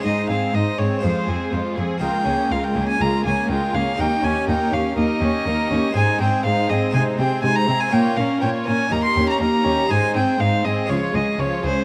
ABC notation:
X:1
M:4/4
L:1/16
Q:1/4=122
K:Ab
V:1 name="Violin"
e2 f2 e2 d2 c4 z4 | g4 f g2 a b2 a2 g2 f2 | g2 a2 g2 f2 e8 | a2 g2 f2 e2 a2 g2 a b2 a |
g2 f2 g2 a2 b c'2 b b4 | a2 g2 f2 e2 d2 e2 d2 c2 |]
V:2 name="Violin section"
c2 A2 c2 A2 c2 A2 c2 A2 | B2 A2 B2 A2 B2 A2 B2 A2 | B2 G2 B2 G2 B2 G2 B2 G2 | c2 A2 c2 A2 c2 A2 c2 A2 |
d2 B2 d2 B2 B2 G2 B2 G2 | c2 A2 c2 A2 d2 A2 d2 A2 |]
V:3 name="Violin section"
E2 C2 E2 C2 F2 A2 F2 A2 | F2 D2 F2 D2 F2 D2 F2 D2 | E2 D2 E2 D2 E2 D2 E2 D2 | E2 C2 E2 C2 E2 C2 E2 C2 |
F2 D2 F2 D2 E2 D2 E2 D2 | E2 C2 E2 C2 F2 D2 F2 D2 |]
V:4 name="Viola section"
A,2 C2 A,2 C2 A,2 C2 A,2 C2 | A,2 B,2 A,2 B,2 A,2 B,2 A,2 B,2 | B,2 D2 B,2 D2 B,2 D2 B,2 D2 | A,2 C2 A,2 C2 A,2 C2 A,2 C2 |
B,2 D2 B,2 D2 B,2 D2 B,2 D2 | A,2 C2 A,2 C2 F,2 A,2 F,2 A,2 |]
V:5 name="Harpsichord"
[A,CEA]8 [CFA]8 | [B,FA]16 | [DEG]16 | [CEA]8 [CEA]8 |
[DFB]8 [DEG]8 | [CEA]8 [A,FA]8 |]
V:6 name="Harpsichord" clef=bass
A,,2 A,,2 A,,2 A,,2 F,,2 F,,2 F,,2 F,,2 | D,,2 D,,2 D,,2 D,,2 D,,2 D,,2 D,,2 D,,2 | E,,2 E,,2 E,,2 E,,2 E,,2 E,,2 E,,2 E,,2 | A,,2 A,,2 A,,2 A,,2 C,2 C,2 C,2 C,2 |
B,,2 B,,2 B,,2 B,,2 E,,2 E,,2 E,,2 E,,2 | A,,2 A,,2 A,,2 A,,2 D,,2 D,,2 D,,2 D,,2 |]
V:7 name="Cello section" clef=bass
A,,2 A,,2 A,,2 A,,2 F,,2 F,,2 F,,2 F,,2 | D,,2 D,,2 D,,2 D,,2 D,,2 D,,2 D,,2 D,,2 | E,,2 E,,2 E,,2 E,,2 E,,2 E,,2 E,,2 E,,2 | A,,2 A,,2 A,,2 A,,2 C,2 C,2 C,2 C,2 |
B,,2 B,,2 B,,2 B,,2 E,,2 E,,2 E,,2 E,,2 | A,,2 A,,2 A,,2 A,,2 D,,2 D,,2 D,,2 D,,2 |]